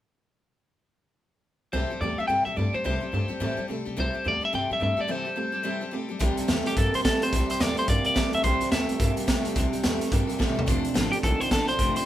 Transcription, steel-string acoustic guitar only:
1.73 C3 E3 G3 C4 G4 A4
1.90 G3 C4 G4 A4
2.01 G3 C4 G4 A4
2.18 G3 C4 G4 A4
2.28 C3 E3 G3 C4 G4 A4
2.46 G3 C4 G4 A4
2.56 G3 C4 G4 A4
2.73 G3 C4 G4 A4
2.84 C3 E3 G3 C4 G4 A4
3.00 G3 C4 G4 A4
3.12 G3 C4 G4 A4
3.28 G3 C4 G4 A4
3.40 C3 E3 G3 C4 G4 A4
3.57 G3 C4 G4 A4
3.68 G3 C4 G4 A4
3.85 G3 C4 G4 A4
3.96 C3 E3 G3 C4 G4 A4
4.13 G3 C4 G4 A4
4.24 G3 C4 G4 A4
4.41 G3 C4 G4 A4
4.53 C3 E3 G3 C4 G4 A4
4.70 G3 C4 G4 A4
4.80 G3 C4 G4 A4
4.97 G3 C4 G4 A4
5.08 C3 E3 G3 C4 G4 A4
5.25 G3 C4 G4 A4
5.36 G3 C4 G4 A4
5.52 G3 C4 G4 A4
5.63 C3 E3 G3 C4 G4 A4
5.81 G3 C4 G4 A4
5.91 G3 C4 G4 A4
6.09 G3 C4 G4 A4
6.19 C3 E3 G3 C4 G4 A4
6.37 G3 C4 G4 A4
6.48 C3 E3 G3 C4 G4 A4
6.65 G3 C4 G4 A4
6.75 G3 C4 G4 A4
6.93 G3 C4 G4 A4
7.04 C3 E3 G3 C4 G4 A4
7.21 G3 C4 G4 A4
7.32 C3 E3 G3 C4 G4 A4
7.49 G3 C4 G4 A4
7.59 C3 E3 G3 C4 G4 A4
7.76 G3 C4 G4 A4
7.86 G3 C4 G4 A4
8.03 G3 C4 G4 A4
8.14 C3 E3 G3 C4 G4 A4
8.32 G3 C4 G4 A4
8.43 C3 E3 G3 C4 G4 A4
8.60 G3 C4 G4 A4
8.71 C3 E3 G3 C4 G4 A4
8.89 G3 C4 G4 A4
9.00 G3 C4 G4 A4
9.16 G3 C4 G4 A4
9.27 C3 E3 G3 C4 G4 A4
9.44 G3 C4 G4 A4
9.55 C3 E3 G3 C4 G4 A4
9.72 G3 C4 G4 A4
9.83 C3 E3 G3 C4 G4 A4
10.00 G3 C4 G4 A4
10.10 G3 C4 G4 A4
10.27 G3 C4 G4 A4
10.38 C3 E3 G3 C4 G4 A4
10.55 G3 C4 G4 A4
10.66 F3 A3 D4 A4 C5
10.83 D4 A4 C5
10.94 F3 A3 D4 A4 C5
11.11 D4 A4 C5
11.23 A3 D4 A4 C5
11.40 D4 A4 C5
11.50 F3 A3 D4 A4 C5
11.68 D4 C5
11.79 F3 A3 D4 A4 C5
11.95 D4 A4 C5

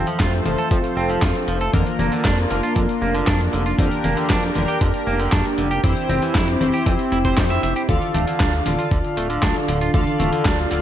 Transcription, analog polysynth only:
Already playing: A3 C4 F4 A4
0.45 A3 C4 F4 A4
1.74 A#3 D4 F4 A#4
2.50 A#3 D4 F4 A#4
3.79 A#3 D4 G4 A#4
4.56 A#3 D4 G4 A#4
5.84 C4 E4 G4 C5
6.61 C4 E4 G4 C5
7.25 C4 E4 G4 C5
7.89 F4 A4 D5 F5
8.66 F4 A4 D5 F5
9.94 F4 A4 D5 F5
10.71 F4 A4 D5 F5

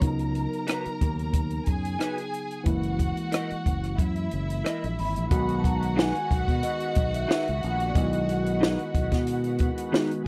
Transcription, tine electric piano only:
0.00 C#3 F#3 B3 D#4
2.64 E3 G#3 A#3 E4
5.29 D#3 G#3 B3 F#4
7.93 D#3 G#3 B3 E4
8.02 F#4
9.92 D#3 G#3 B3 F#4

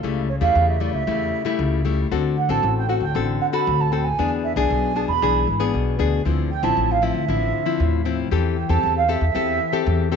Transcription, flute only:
0.29 C#5
0.41 F5
0.68 E5
0.80 D5
0.92 E5
2.38 F#5
2.50 A5
2.78 G5
2.89 F#5
3.02 G5
3.41 F#5
3.53 B5
3.80 A5
3.92 G5
4.04 G#5
4.44 E5
4.56 G#5
4.96 A5
5.08 B5
6.51 G5
6.63 A5
6.91 F5
7.03 E5
8.56 G5
8.69 A5
8.97 F5
9.09 E5

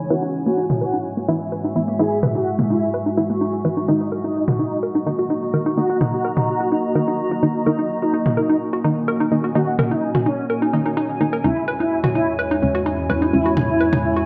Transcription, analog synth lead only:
0.10 F#4
0.46 F#4
0.81 F#4
1.99 G#4
2.35 F#4
2.70 E4
3.88 D#4
4.24 D#4
4.59 D#4
5.77 F#4
6.13 F#4
6.48 F#4
7.66 D#4
8.02 D#4
8.37 D#4
9.55 F#4
9.91 D#4
10.26 C#4
11.44 E4
11.80 E4
12.15 E4
13.33 E4
13.69 E4
14.04 E4

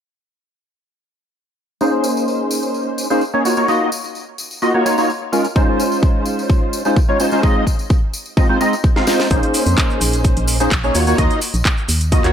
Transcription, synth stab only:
1.81 A#3 C#4 D#4 G#4 C5
3.10 A#3 C#4 D#4 G#4 C5
3.34 A#3 C#4 D#4 G#4 C#5
3.45 A#3 D#4 F4 F#4 C#5
3.57 A#3 D#4 F4 F#4 C#5
3.68 A#3 D#4 F4 F#4 D#5
4.62 A#3 D#4 F4 F#4 D#5
4.74 A#3 D#4 F4 F#4 C#5
4.85 A#3 D#4 F4 F#4 C#5
4.98 A#3 D#4 F4 F#4 C#5
5.32 G#3 C#4 D#4 F4 A#4
5.56 G#3 C#4 D#4 F4 C5
6.85 G#3 C#4 D#4 F4 C5
7.09 G#3 C#4 D#4 F4 C#5
7.20 G#3 C#4 D#4 F4 C5
7.32 G#3 C#4 D#4 F4 C5
7.43 G#3 C4 D#4 F4 D#5
8.37 G#3 C4 D#4 F4 D#5
8.49 G#3 C4 D#4 F4 C5
8.61 G#3 C4 D#4 F4 D#5
8.96 G#3 C4 D#4 F4 F5
9.07 G#3 C4 D#4 F4 C5
9.31 A#3 C#4 D#4 G#4 C5
10.60 A#3 C#4 D#4 G#4 C5
10.84 A#3 C#4 D#4 G#4 C#5
10.95 A#3 D#4 F4 F#4 C#5
11.07 A#3 D#4 F4 F#4 C#5
11.18 A#3 D#4 F4 F#4 D#5
12.12 A#3 D#4 F4 F#4 D#5
12.24 A#3 D#4 F4 F#4 C#5

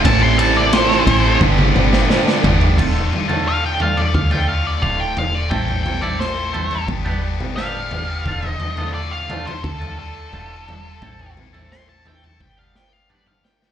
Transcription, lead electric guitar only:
0.06 A5
0.23 C6
0.39 A5
0.57 D5
0.73 C5
3.48 F5
3.66 G5
3.82 F5
3.97 D5
4.14 F5
4.32 G5
4.49 F5
4.67 D5
4.82 F5
5.00 G5
5.18 F5
5.35 D5
5.50 G5
5.66 G5
5.83 G5
6.02 D5
6.20 C5
7.56 F5
8.49 D#5
8.94 D5
9.11 F5
9.47 C5
9.64 A4
9.99 A4
11.72 C6
11.89 A5
12.08 G5
12.24 A5
12.41 G5
12.59 F5
12.76 G5
12.93 F5
13.10 D5
13.27 F5
13.44 G5

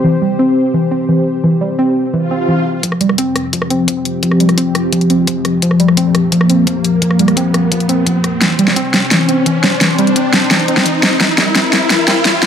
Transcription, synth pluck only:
0.04 E3
0.22 G3
0.39 C4
0.74 E3
0.91 C4
1.09 E3
1.44 E3
1.61 G3
1.79 C4
2.13 E3
2.31 C4
2.48 E3
2.83 F3
3.01 G3
3.18 C4
3.53 F3
3.70 C4
3.88 F3
4.23 F3
4.40 G3
4.58 C4
4.93 F3
5.10 C4
5.27 F3
5.62 F3
5.80 G3
5.97 C4
6.32 F3
6.49 C4
6.67 F3
7.02 F3
7.19 G3
7.37 C4
7.72 F3
7.89 C4
8.07 F3
8.41 E3
8.59 G3
8.76 C4
9.11 E3
9.29 C4
9.46 E3
9.81 E3
9.98 G3
10.16 C4
10.51 E3
10.68 C4
10.86 E3
11.21 E3
11.38 G3
11.55 C4
11.90 E3
12.08 C4
12.25 E3

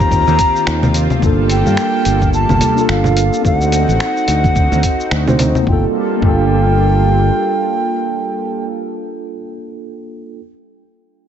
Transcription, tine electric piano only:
Already playing: A#3 C4 F4 G4
1.19 A#3 D4
1.24 F4 A4
2.74 A#3 D4
2.78 F4 A4
3.41 C4 D#4
3.45 F#4 A4
5.26 C4 D#4 F#4 C5
5.62 A#3 D4
5.69 F4 A4
6.17 A#3 D4
6.24 F4 A4

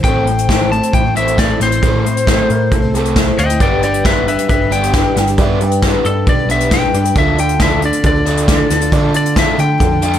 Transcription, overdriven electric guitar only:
0.04 A2 A3 C4
0.27 A2 A3
0.49 A2 A3 C4
0.71 A2 A3
0.94 A2 A3
1.15 A2 A3 C4
1.38 A2 A3
1.60 A2 A3
1.82 A2 A3 C4
2.05 A2 A3
2.27 A2 A3 C4
2.51 A2 A3
2.73 A2 A3
2.94 A2 A3 C4
3.17 A2 A3
3.38 A2 A3
3.60 G3 B3 D4
3.83 G3 D4
4.04 G3 B3 D4
4.27 G3 D4
4.49 G3 D4
4.71 G3 B3 D4
4.94 G3 D4
5.17 G3 D4
5.39 G3 B3 D4
5.62 G3 D4
5.83 G3 B3 D4
6.05 G3 D4
6.27 G3 D4
6.49 G3 B3 D4
6.72 G3 D4
6.95 G3 D4
7.17 D3 D4 F4
7.39 D3 D4
7.60 D3 D4 F4
7.83 D3 D4
8.05 D3 D4
8.26 D3 D4 F4
8.49 D3 D4
8.71 D3 D4
8.93 D3 D4 F4
9.15 D3 D4
9.37 D3 D4 F4
9.58 D3 D4
9.80 D3 D4
10.02 D3 D4 F4

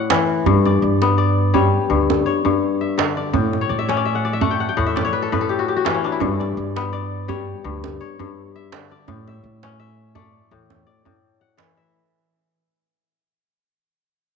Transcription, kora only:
Already playing: A2 A3 D5 F#5
0.10 E3
0.46 G2
0.66 D5
1.02 B3
1.18 D5
1.54 G3 C#5
1.90 G2
2.26 C#5
2.45 G2
2.81 E5
2.98 D3
3.17 D5
3.33 A2
3.61 C#5
3.69 D5
3.79 E5
3.89 C#4 C#5
3.97 D5
4.05 E5
4.15 F#5
4.25 D5
4.33 E5
4.41 A3 F#5
4.51 G5
4.60 F#5
4.69 G5
4.77 A2 F#5
4.87 E5
4.96 D5
5.05 C#5
5.13 B4
5.22 A4
5.32 A2 B4
5.41 A4
5.49 G4
5.59 F#4
5.68 G4
5.76 F#4
5.85 E3 E4
5.94 C#4
6.04 D4
6.12 E4
6.20 G2
6.40 D5
6.76 B3
6.93 D5
7.28 G3 C#5
7.64 G2
8.01 C#5
8.19 G2
8.56 E5
8.72 D3
8.91 D5
9.08 A2
9.28 E5
9.63 C#4
9.80 E5
10.15 A3 D5
10.52 A2
10.87 D5
11.05 A2
11.41 F#5
11.58 E3
11.77 E5

